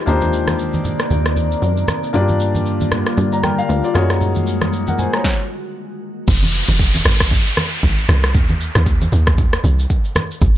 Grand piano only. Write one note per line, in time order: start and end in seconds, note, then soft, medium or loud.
0.06 2.09 A#3 medium
0.06 2.10 D4 medium
0.06 2.10 D#4 medium
0.06 2.10 G4 medium
0.06 2.11 C5 medium
2.13 3.91 A#3 medium
2.13 3.91 D4 medium
2.13 3.15 F4 medium
2.13 3.16 G4 medium
2.13 3.16 D5 medium
3.33 3.43 D5 medium
3.33 3.43 A#5 medium
3.43 3.58 A#4 medium
3.43 3.58 G5 medium
3.58 3.83 F5 medium
3.84 4.09 F4 medium
3.84 4.09 D5 medium
3.94 5.21 A#3 medium
3.94 5.22 D#4 medium
3.94 5.22 F#4 medium
3.94 5.22 G#4 medium
3.94 4.72 C#5 medium
4.88 4.98 A#4 medium
4.88 4.98 F#5 medium
4.99 5.13 C5 medium
4.99 5.13 G#5 medium
5.14 5.39 C#5 medium
5.14 5.38 A#5 medium